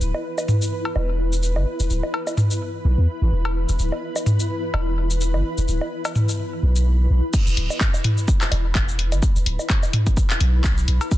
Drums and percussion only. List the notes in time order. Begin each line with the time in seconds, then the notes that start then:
0.01 shaker
0.15 low woodblock
0.38 low woodblock, shaker
0.48 mid tom, shaker
0.62 shaker
0.85 cowbell
0.96 low woodblock
1.33 shaker
1.43 shaker
1.56 low woodblock
1.80 shaker
1.90 shaker
2.03 low woodblock
2.14 cowbell
2.27 low woodblock, shaker
2.37 mid tom, shaker
2.51 shaker
3.45 cowbell
3.69 shaker
3.79 shaker
3.92 low woodblock
4.16 low woodblock, shaker
4.26 mid tom, shaker
4.40 shaker
4.74 cowbell, low woodblock
5.10 shaker
5.21 shaker
5.34 low woodblock
5.58 shaker
5.68 shaker
5.81 low woodblock
6.05 cowbell, low woodblock, shaker
6.15 mid tom, shaker
6.29 shaker
6.76 shaker
7.33 kick, crash, shaker
7.47 shaker
7.57 open hi-hat
7.70 low woodblock, shaker
7.81 kick, clap, shaker
7.94 low woodblock, shaker
8.04 mid tom, open hi-hat
8.18 shaker
8.28 kick, shaker
8.41 clap, cowbell, shaker
8.52 open hi-hat, low woodblock
8.75 kick, clap, shaker
8.88 shaker
8.99 open hi-hat
9.12 open hi-hat, low woodblock, shaker
9.23 kick, shaker
9.36 shaker
9.46 open hi-hat
9.59 low woodblock, shaker
9.70 kick, clap, cowbell, shaker
9.83 low woodblock, shaker
9.93 mid tom, open hi-hat
10.07 kick, open hi-hat, shaker
10.17 kick, shaker
10.30 clap, shaker
10.40 open hi-hat
10.64 kick, clap, shaker
10.77 shaker
10.88 open hi-hat
11.01 open hi-hat, cowbell, shaker
11.11 kick, shaker